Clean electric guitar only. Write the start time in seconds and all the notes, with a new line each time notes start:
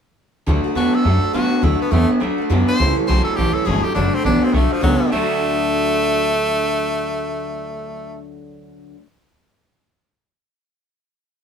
0.47 D3 A3
0.76 D3 B3
1.05 D3 A3
1.34 D3 B3
1.63 D3 A3
1.93 D3 B3
2.21 D3 A3
2.50 D3 B3
2.80 A2 E3
3.09 A2 F#3
3.37 A2 E3
3.66 A2 F#3
3.95 D3 A3
4.24 D3 B3
4.53 D3 A3
4.83 D3 B3
5.10 D3 A3 D4 F#4